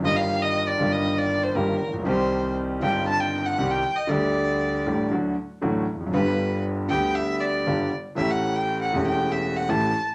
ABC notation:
X:1
M:4/4
L:1/16
Q:1/4=118
K:G
V:1 name="Violin"
_e =f2 e2 d2 e2 d2 c _B3 z | c4 z2 g2 a g2 f2 g2 _e | d8 z8 | B4 z2 g2 e2 d4 z2 |
e f2 g2 f2 g2 e2 f a3 z |]
V:2 name="Grand piano" clef=bass
[G,,,G,,_E,G,_B,G]6 [G,,,G,,E,G,B,G]6 [G,,,G,,E,G,B,G]2 z/2 A,,,/2 _B,,,/2 =B,,,/2 | [C,,C,_E,G,CG]6 [G,,,G,,E,G,CG]6 [C,,C,E,G,CG]2 z2 | [D,,D,G,A,G]6 [A,,,A,,D,G,A,G]2 [D,,D,F,A,F]2 z2 [A,,,A,,D,F,A,F]2 z/2 E,,/2 =F,,/2 ^F,,/2 | [G,,,G,,D,G,B,G]6 [D,,D,G,B,G]6 [G,,,G,,D,G,B,G]2 z2 |
[A,,,A,,E,A,^CG]6 [E,,,E,,E,A,CG]6 [A,,,A,,E,A,CG]2 z2 |]
V:3 name="Upright bass" clef=bass
G,,,4- G,,,3/2 z/2 G,,,4- G,,,3/2 z/2 G,,,3/2 z A,,,/2 _B,,,/2 =B,,,/2 | C,,4- C,,3/2 z/2 G,,,4- G,,,3/2 z/2 C,,3/2 z2 z/2 | D,,4- D,,3/2 z/2 A,,,3/2 z/2 D,,3/2 z2 z/2 A,,,3/2 z E,,,/2 =F,,,/2 ^F,,,/2 | G,,,4- G,,,3/2 z/2 D,,4- D,,3/2 z/2 G,,,3/2 z2 z/2 |
A,,,4- A,,,3/2 z/2 E,,,4- E,,,3/2 z/2 A,,,3/2 z2 z/2 |]